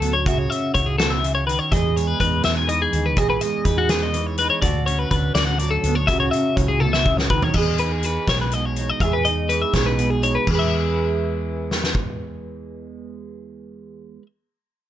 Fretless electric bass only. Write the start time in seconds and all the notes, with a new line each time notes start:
0.00 D2
0.27 C#2
0.75 C#2
1.72 E2
2.20 E2
2.45 E2
2.93 D#2
3.17 B1
3.66 E2
4.62 D2
5.11 D2
5.35 D2
5.83 D2
6.09 C#2
6.57 C#2
7.54 E2
8.28 B1
9.00 E2
9.74 B1
10.47 E2